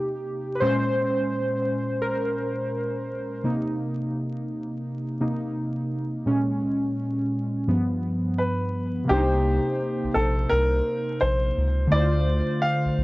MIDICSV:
0, 0, Header, 1, 4, 480
1, 0, Start_track
1, 0, Tempo, 705882
1, 418, Time_signature, 4, 2, 24, 8
1, 8866, End_track
2, 0, Start_track
2, 0, Title_t, "Upright piano"
2, 0, Program_c, 0, 0
2, 5701, Note_on_c, 0, 71, 71
2, 6183, Note_on_c, 0, 67, 90
2, 6194, Note_off_c, 0, 71, 0
2, 6873, Note_off_c, 0, 67, 0
2, 6898, Note_on_c, 0, 69, 77
2, 7137, Note_on_c, 0, 70, 97
2, 7145, Note_off_c, 0, 69, 0
2, 7620, Note_on_c, 0, 72, 86
2, 7632, Note_off_c, 0, 70, 0
2, 8104, Note_on_c, 0, 74, 93
2, 8113, Note_off_c, 0, 72, 0
2, 8579, Note_on_c, 0, 77, 87
2, 8595, Note_off_c, 0, 74, 0
2, 8866, Note_off_c, 0, 77, 0
2, 8866, End_track
3, 0, Start_track
3, 0, Title_t, "Synth keys"
3, 0, Program_c, 1, 88
3, 0, Control_c, 1, 64, 127
3, 0, Note_on_c, 1, 48, 45
3, 0, Note_on_c, 1, 58, 39
3, 0, Note_on_c, 1, 63, 54
3, 0, Note_on_c, 1, 67, 85
3, 375, Note_on_c, 1, 71, 64
3, 389, Note_off_c, 1, 48, 0
3, 391, Note_off_c, 1, 58, 0
3, 394, Note_off_c, 1, 63, 0
3, 410, Note_on_c, 1, 72, 94
3, 414, Note_off_c, 1, 71, 0
3, 416, Note_on_c, 1, 46, 49
3, 420, Note_on_c, 1, 56, 45
3, 424, Note_on_c, 1, 61, 50
3, 427, Control_c, 1, 64, 0
3, 429, Note_off_c, 1, 67, 0
3, 533, Control_c, 1, 64, 127
3, 1371, Note_on_c, 1, 70, 81
3, 1403, Note_off_c, 1, 72, 0
3, 2067, Note_off_c, 1, 70, 0
3, 2310, Note_off_c, 1, 46, 0
3, 2312, Note_off_c, 1, 56, 0
3, 2314, Note_off_c, 1, 61, 0
3, 2337, Note_on_c, 1, 48, 51
3, 2342, Note_on_c, 1, 58, 40
3, 2345, Note_on_c, 1, 63, 57
3, 2346, Control_c, 1, 64, 0
3, 2467, Control_c, 1, 64, 127
3, 3030, Note_off_c, 1, 48, 0
3, 3033, Note_off_c, 1, 58, 0
3, 3034, Note_off_c, 1, 63, 0
3, 3540, Note_on_c, 1, 48, 42
3, 3541, Note_on_c, 1, 58, 38
3, 3544, Note_on_c, 1, 63, 51
3, 3755, Note_off_c, 1, 48, 0
3, 3756, Note_off_c, 1, 58, 0
3, 3757, Note_off_c, 1, 63, 0
3, 4255, Note_on_c, 1, 46, 50
3, 4258, Note_on_c, 1, 56, 50
3, 4263, Note_on_c, 1, 61, 57
3, 4265, Control_c, 1, 64, 0
3, 4387, Control_c, 1, 64, 127
3, 5189, Note_off_c, 1, 46, 0
3, 5191, Note_off_c, 1, 56, 0
3, 5193, Note_off_c, 1, 61, 0
3, 5216, Note_on_c, 1, 43, 52
3, 5221, Note_on_c, 1, 53, 42
3, 5225, Note_on_c, 1, 59, 51
3, 5226, Control_c, 1, 64, 0
3, 5343, Control_c, 1, 64, 127
3, 5562, Note_off_c, 1, 43, 0
3, 5565, Note_off_c, 1, 53, 0
3, 5567, Note_off_c, 1, 59, 0
3, 6149, Note_on_c, 1, 48, 58
3, 6169, Note_on_c, 1, 58, 58
3, 6186, Control_c, 1, 64, 0
3, 6190, Note_on_c, 1, 62, 49
3, 6208, Note_on_c, 1, 72, 69
3, 6233, Note_on_c, 1, 63, 58
3, 6241, Note_off_c, 1, 62, 0
3, 6323, Control_c, 1, 64, 127
3, 8056, Note_off_c, 1, 48, 0
3, 8066, Note_off_c, 1, 58, 0
3, 8073, Note_on_c, 1, 50, 61
3, 8086, Note_off_c, 1, 72, 0
3, 8093, Note_on_c, 1, 57, 52
3, 8098, Note_off_c, 1, 63, 0
3, 8106, Control_c, 1, 64, 0
3, 8111, Note_on_c, 1, 64, 47
3, 8130, Note_on_c, 1, 72, 69
3, 8155, Note_on_c, 1, 65, 55
3, 8161, Note_off_c, 1, 64, 0
3, 8233, Control_c, 1, 64, 127
3, 8866, Note_off_c, 1, 50, 0
3, 8866, Note_off_c, 1, 57, 0
3, 8866, Note_off_c, 1, 65, 0
3, 8866, Note_off_c, 1, 72, 0
3, 8866, End_track
4, 0, Start_track
4, 0, Title_t, "Sub bass"
4, 0, Program_c, 2, 38
4, 6189, Note_on_c, 2, 36, 107
4, 6526, Note_off_c, 2, 36, 0
4, 6826, Note_on_c, 2, 34, 49
4, 6857, Note_off_c, 2, 34, 0
4, 6907, Note_on_c, 2, 34, 83
4, 7111, Note_off_c, 2, 34, 0
4, 7153, Note_on_c, 2, 36, 104
4, 7354, Note_off_c, 2, 36, 0
4, 7629, Note_on_c, 2, 34, 91
4, 7832, Note_off_c, 2, 34, 0
4, 7871, Note_on_c, 2, 37, 95
4, 8073, Note_off_c, 2, 37, 0
4, 8106, Note_on_c, 2, 38, 105
4, 8444, Note_off_c, 2, 38, 0
4, 8739, Note_on_c, 2, 35, 47
4, 8772, Note_off_c, 2, 35, 0
4, 8826, Note_on_c, 2, 35, 83
4, 8866, Note_off_c, 2, 35, 0
4, 8866, End_track
0, 0, End_of_file